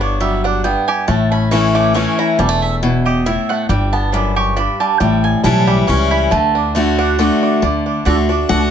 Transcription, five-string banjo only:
0.00 0.40 B3 medium
0.00 0.44 D4 medium
0.21 0.83 G3 medium
0.45 1.04 D4 medium
0.65 1.08 B3 medium
0.88 1.08 G4 medium
1.08 1.74 A3 medium
1.32 1.92 C#4 medium
1.51 2.14 E4 medium
1.75 2.39 A3 medium
1.95 2.58 C#4 medium
2.19 2.79 E4 medium
2.39 2.49 G3 medium
2.49 2.83 A3 medium
2.83 3.25 E4 medium
3.06 3.66 G4 medium
3.26 3.70 E4 medium
3.50 3.69 A3 medium
3.69 4.80 G3 medium
3.93 4.53 B3 medium
4.13 4.55 D4 medium
4.36 4.96 G4 medium
4.57 5.00 D4 medium
4.80 4.99 G3 medium
5.00 5.63 G3 medium
5.44 6.06 E4 medium
5.67 6.27 G3 medium
5.88 6.31 C#4 medium
6.11 6.31 E4 medium
6.31 6.74 A3 medium
6.55 6.98 D4 medium
6.75 7.37 A3 medium
6.99 7.18 D4 medium
7.19 7.42 D4 medium
7.43 7.62 D4 medium
7.63 7.86 D4 medium
7.86 8.06 D4 medium
8.06 8.29 D4 medium
8.29 8.49 D4 medium
8.50 8.71 D4 medium

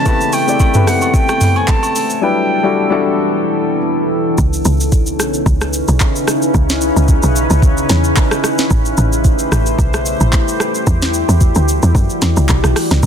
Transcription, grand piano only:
0.05 0.38 A3 medium
0.05 0.39 C4 medium
0.05 0.39 E4 medium
0.05 0.39 G4 medium
0.05 0.39 B4 medium
0.47 0.68 A3 medium
0.47 0.69 C4 medium
0.47 0.69 E4 medium
0.47 0.69 G4 medium
0.47 0.69 D5 medium
0.74 1.60 A3 medium
0.74 1.61 C4 medium
0.74 1.61 E4 medium
0.74 1.61 G4 medium
0.74 1.61 B4 medium
2.21 2.55 F#3 medium
2.21 2.55 G3 medium
2.21 2.55 D4 medium
2.21 2.55 E4 medium
2.21 2.56 B4 medium
2.63 2.85 G3 medium
2.63 2.85 D4 medium
2.63 2.85 E4 medium
2.63 2.85 F#4 medium
2.63 2.86 A4 medium
2.90 3.76 G3 medium
2.90 3.77 D4 medium
2.90 3.77 E4 medium
2.90 3.77 F#4 medium
2.90 3.78 A4 loud

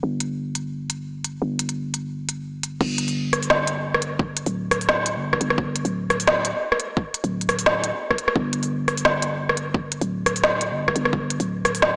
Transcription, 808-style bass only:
0.03 1.40 G1 medium
1.42 2.79 G1 medium
2.81 4.45 G1 loud
4.46 5.17 D1 loud
5.16 5.40 G1 loud
5.41 5.84 G1 medium
5.85 6.53 D1 loud
7.24 7.92 D1 loud
8.36 10.00 G1 loud
10.01 10.72 D1 loud
10.71 10.95 G1 loud
10.96 11.39 G1 medium
11.40 11.96 D1 loud

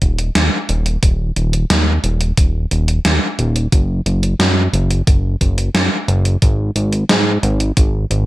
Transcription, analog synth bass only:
0.02 0.30 D#1 medium
0.35 0.50 D#2 medium
0.69 0.98 D#1 loud
1.03 1.32 D#1 loud
1.36 1.65 D#1 medium
1.70 1.99 D#2 medium
2.04 2.33 D#1 medium
2.38 2.66 D#1 medium
2.71 3.00 D#1 medium
3.05 3.19 D#2 medium
3.39 3.67 D#1 loud
3.72 4.01 F#1 loud
4.06 4.35 F#1 medium
4.39 4.68 F#2 medium
4.73 5.02 F#1 medium
5.07 5.36 F#1 medium
5.41 5.70 F#1 medium
5.75 5.89 F#2 medium
6.08 6.37 F#1 loud
6.42 6.71 G#1 loud
6.76 7.04 G#1 medium
7.09 7.38 G#2 medium
7.43 7.72 G#1 loud
7.77 8.06 G#1 medium
8.11 8.26 G#1 medium

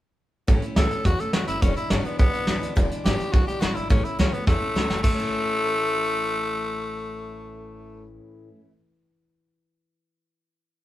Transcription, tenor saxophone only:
0.78 1.07 A4 loud
1.06 1.22 F#4 loud
1.20 1.33 A4 medium
1.34 1.47 F#4 medium
1.48 1.64 E4 medium
1.62 1.76 C#4 medium
1.77 1.93 E4 medium
1.91 2.04 C#4 medium
2.05 2.18 B3 medium
2.19 2.75 B3 loud
3.05 3.34 G4 loud
3.33 3.47 F#4 loud
3.47 3.62 G4 loud
3.61 3.76 F#4 medium
3.75 3.89 E4 medium
3.90 4.06 C#4 medium
4.04 4.18 E4 medium
4.20 4.35 C#4 medium
4.33 4.47 B3 medium
4.47 5.02 A3 loud
5.03 8.06 A3 loud

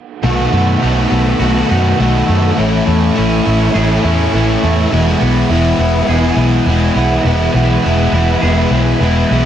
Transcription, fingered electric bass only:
0.23 0.45 B1 medium
0.52 0.74 F#2 medium
0.83 1.05 B1 medium
1.11 1.33 B1 medium
1.39 1.62 B1 medium
1.71 1.92 F#2 medium
2.00 2.21 B1 medium
2.29 2.50 F#2 medium
2.59 2.80 A1 medium
2.87 3.09 E2 medium
3.18 3.39 A1 medium
3.46 3.68 A1 medium
3.75 3.97 A1 medium
4.04 4.26 E2 medium
4.33 4.55 A1 medium
4.63 4.85 E2 medium
4.92 5.14 E1 medium
5.22 5.43 B1 medium
5.49 5.71 E1 medium
5.78 6.00 E1 medium
6.08 6.30 E1 medium
6.36 6.59 B1 medium
6.66 6.88 E1 medium
6.95 7.17 B1 medium
7.24 7.46 E1 medium
7.54 7.76 B1 medium
7.85 8.07 E1 medium
8.12 8.34 E1 medium
8.42 8.64 E1 medium
8.70 8.93 B1 medium
9.00 9.22 E1 medium
9.30 9.45 B1 medium

